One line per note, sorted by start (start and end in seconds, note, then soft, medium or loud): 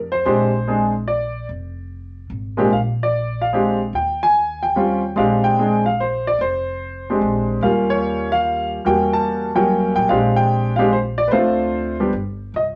0.00 0.22 F2 medium
0.12 0.24 C5 medium
0.25 1.44 A#1 medium
0.25 0.50 G#3 medium
0.25 0.50 C4 medium
0.25 0.50 D4 medium
0.25 0.50 G4 medium
0.25 0.90 C5 medium
0.67 0.91 G#3 medium
0.67 0.92 C4 soft
0.67 0.92 D4 medium
0.67 0.92 G#4 medium
1.08 1.45 D5 medium
1.49 2.26 F1 medium
2.30 2.68 G#1 medium
2.57 2.69 A#2 medium
2.57 2.69 G#3 medium
2.57 2.70 C4 medium
2.57 2.70 D4 medium
2.57 2.70 G4 medium
2.70 3.89 A#1 medium
2.70 2.79 F5 medium
3.03 3.43 D5 medium
3.42 3.79 F5 medium
3.53 3.78 G#3 medium
3.53 3.78 C4 medium
3.53 3.78 D4 medium
3.53 3.78 G4 medium
3.93 5.12 D#2 medium
3.93 4.23 G5 medium
4.23 4.64 G#5 loud
4.63 5.18 G5 medium
4.76 5.00 G3 medium
4.76 5.00 C4 medium
4.76 5.01 C#4 medium
4.76 5.01 F4 medium
5.16 6.35 A#1 medium
5.16 5.56 G#3 medium
5.16 5.56 C4 medium
5.16 5.56 D4 medium
5.16 5.57 G4 medium
5.16 5.43 F5 medium
5.44 5.82 G5 loud
5.59 5.83 G#3 medium
5.59 5.83 C4 medium
5.59 5.83 D4 soft
5.59 5.83 G#4 medium
5.86 5.98 F5 medium
6.00 6.25 C5 medium
6.27 6.39 D5 medium
6.39 7.17 F1 medium
6.39 7.46 C5 medium
7.10 7.61 G#3 soft
7.10 7.61 C4 medium
7.10 7.61 D4 medium
7.10 7.61 G4 medium
7.21 7.59 A#1 medium
7.61 8.80 D#2 medium
7.61 8.77 G3 medium
7.61 8.77 A#3 medium
7.61 8.77 C#4 medium
7.61 8.78 F4 medium
7.61 7.91 F5 medium
7.90 8.32 C#5 medium
8.32 8.69 F5 loud
8.85 9.91 E2 medium
8.85 9.48 G3 medium
8.85 9.48 A#3 soft
8.85 9.48 C#4 soft
8.85 9.49 F#4 medium
8.85 9.11 G5 medium
9.13 9.51 A5 medium
9.55 10.06 F#3 medium
9.55 10.06 G3 medium
9.55 10.06 A#3 medium
9.55 10.06 C#4 medium
9.55 9.93 G5 medium
9.95 10.07 A1 medium
9.95 10.08 G5 loud
10.09 11.27 A#1 medium
10.09 10.72 G#3 medium
10.09 10.72 C4 medium
10.09 10.72 D4 medium
10.09 10.72 G4 medium
10.09 10.34 F5 medium
10.36 10.78 G5 loud
10.76 10.90 G#3 medium
10.76 10.90 C4 medium
10.76 10.90 D4 medium
10.76 10.90 G4 medium
10.76 10.90 F5 medium
10.93 10.98 C5 medium
11.18 11.27 D5 medium
11.28 12.09 D2 medium
11.28 11.32 B4 medium
11.28 12.09 C5 medium
11.32 11.94 A3 medium
11.32 11.95 C4 medium
11.32 11.95 D4 medium
11.32 11.95 F4 medium
12.00 12.12 G3 medium
12.00 12.12 B3 medium
12.00 12.12 D4 medium
12.00 12.12 G4 medium
12.13 12.51 G1 medium
12.54 12.76 C2 medium
12.54 12.62 D#5 medium